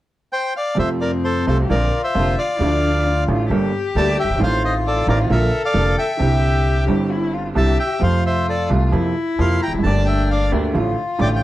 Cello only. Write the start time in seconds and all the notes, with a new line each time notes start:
0.78 C4
1.62 G4
1.70 F4
2.61 D4
3.04 F4
3.50 G4
4.39 F4
5.30 A4
6.20 G4
7.11 E4
7.33 F4
7.55 G4
8.01 F4
8.93 E4
9.84 D4
10.74 F4